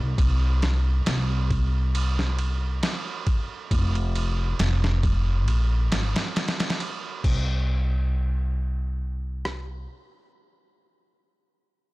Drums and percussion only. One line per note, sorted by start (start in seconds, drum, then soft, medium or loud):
0.18 kick loud
0.18 ride medium
0.62 snare medium
0.62 ride medium
1.06 snare loud
1.06 ride medium
1.50 kick medium
1.50 ride medium
1.95 ride medium
2.19 snare soft
2.39 ride medium
2.83 snare loud
2.83 ride medium
3.27 kick loud
3.27 ride medium
3.71 kick loud
3.71 ride medium
3.95 ride soft
4.15 ride medium
4.59 snare loud
4.59 ride medium
4.84 snare medium
5.03 kick medium
5.03 ride medium
5.48 ride medium
5.92 snare loud
5.92 ride medium
6.16 snare loud
6.16 ride medium
6.36 snare medium
6.36 ride medium
6.48 snare medium
6.48 ride medium
6.60 snare medium
6.60 ride medium
6.70 snare medium
6.70 ride medium
6.80 ride medium
7.24 kick loud
7.24 crash medium
9.45 cross-stick medium